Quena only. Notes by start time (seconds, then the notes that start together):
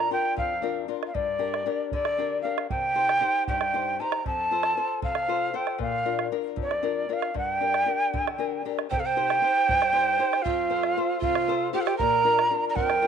Already playing: A#5
0.13 G5
0.38 F5
1.07 F5
1.15 D5
1.92 D5
2.42 F5
2.69 G5
3.48 G5
4.00 A#5
4.27 A5
5.04 F5
5.56 G5
5.82 F5
6.62 D5
7.13 F5
7.38 F#5
7.53 G5
8.91 G5
9.00 F5
9.06 G5
10.42 F5
11.22 F5
11.74 G5
11.81 F5
11.87 G5
11.98 A#5
12.69 A#5
12.75 G5